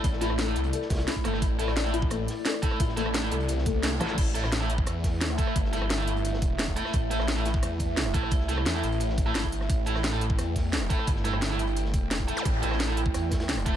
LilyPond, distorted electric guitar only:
\new Staff \with { instrumentName = "Distorted electric guitar" } { \time 4/4 \key a \minor \tempo 4 = 174 r8 <a e' a'>16 r8 <a e' a'>16 r2 <a e' a'>8 | r8 <a e' a'>16 r8 <a e' a'>16 r2 <a e' a'>8 | r8 <a e' a'>16 r8 <a e' a'>16 r2 <a e' a'>8 | r8 <a e' a'>16 r8 <a e' a'>16 r2 <a e' a'>8 |
r8 <a e' a'>16 r8 <a e' a'>16 r2 <a e' a'>8 | r8 <a e' a'>16 r8 <a e' a'>16 r2 <a e' a'>8 | r8 <a e' a'>16 r8 <a e' a'>16 r4 r16 <a e' a'>8 r8. | r8 <a e' a'>16 r8 <a e' a'>16 r2 <a e' a'>8 |
r8 <a e' a'>16 r8 <a e' a'>16 r2 <a e' a'>8 | r8 <a e' a'>16 r8 <a e' a'>16 r2 <a e' a'>8 | }